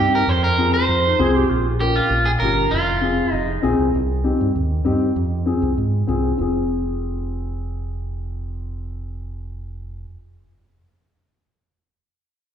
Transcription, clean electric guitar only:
Already playing: G4
0.15 A#4
0.29 C5
0.44 A#4
0.74 C5
1.80 G4
1.96 F4
2.25 G#4
2.40 A#4
2.71 F4
3.34 D#4

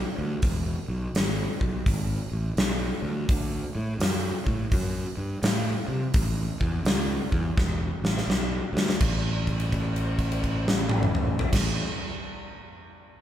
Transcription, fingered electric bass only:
0.18 D2
0.43 E1
0.88 B1
1.14 G#1
1.61 B1
1.86 G#1
2.32 A1
2.57 B1
3.02 D2
3.29 D2
3.75 A2
3.99 F#2
4.46 A2
4.72 F#2
5.17 G2
5.42 A2
5.88 C3
6.14 A1
6.60 E2
6.84 C#2
7.32 E2
7.57 E1
8.02 A1
8.27 B1
8.73 D2
9.00 A1
11.53 A1

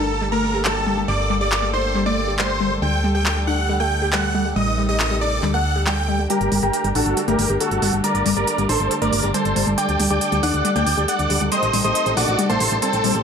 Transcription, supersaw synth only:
0.00 A4
0.32 A#4
0.65 A4
1.08 D5
1.41 D5
1.73 C5
2.06 D5
2.39 C5
2.82 G5
3.15 G5
3.47 F#5
3.80 G5
4.13 F#5
4.56 D#5
4.89 D#5
5.21 D5
5.54 F#5
5.87 G5
6.30 G4 A#4
6.63 G4 A#4
6.95 F#4 A4
7.28 G4 A#4
7.61 F#4 A4
8.04 A#4 D5
8.37 A#4 D5
8.69 A4 C5
9.02 A#4 D5
9.34 A4 C5
9.78 D5 G5
10.10 D5 G5
10.43 D5 F#5
10.76 D5 G5
11.08 D5 F#5
11.52 C5 D#5
11.84 C5 D#5
12.17 F#4 D5
12.49 A4 C5
12.82 C4 A4

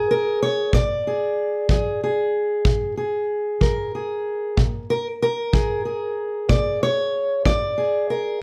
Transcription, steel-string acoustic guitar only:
Already playing: F3 G#4
0.11 A#4
0.42 C#5
0.74 A#2 D5
1.07 G#4
1.70 F3 G#4
2.04 G#4
2.65 A#2
2.97 G#4
3.61 F3 A#4
3.95 G#4
4.57 A#2
4.90 A#4
5.22 A#4
5.53 F3 G#4
5.85 G#4
6.49 A#2 D5
6.83 C#5
7.46 F3 D5
7.78 G#4
8.10 A#4

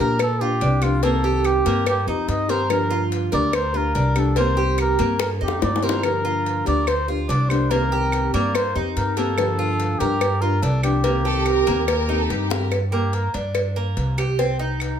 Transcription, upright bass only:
0.00 A#2
0.61 C2
1.66 G2
2.07 F2
2.28 G2
3.33 D2
3.95 C2
5.00 G2
5.41 F2
5.63 G2
6.67 D2
7.29 C2
8.34 G2
8.75 F2
8.96 G2
10.01 G2
10.62 C2
11.67 D#2
12.30 G2
13.34 G2
13.97 C2

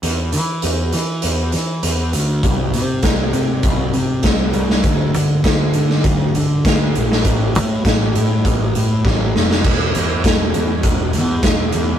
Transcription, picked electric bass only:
0.03 E2
0.33 E3
0.64 E2
0.94 E3
1.24 E2
1.54 E3
1.83 E2
2.13 D2
2.43 C2
2.74 C3
3.03 C2
3.33 C3
3.63 C2
3.94 C3
4.24 C2
4.54 C2
4.84 D2
5.14 D3
5.44 D2
5.75 D3
6.04 D2
6.35 D3
6.65 D2
6.96 A#1
7.25 A1
7.56 A2
7.85 A1
8.15 A2
8.45 A1
8.76 A2
9.05 A1
9.36 F1
9.64 E1
9.95 E2
10.24 E1
10.55 E2
10.84 E1
11.14 E2
11.43 E1
11.74 E2

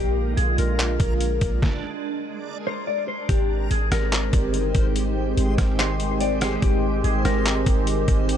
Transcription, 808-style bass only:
Already playing: A#1
0.37 A#1
0.58 A#1
1.00 A#1
1.42 A#1
3.29 G#1
3.71 G#1
3.92 G#1
4.33 G1
4.75 G#1
5.37 G#1
5.58 G#1
6.62 G#1
7.04 G#1
7.25 G#1
7.67 G#1
8.08 G#1

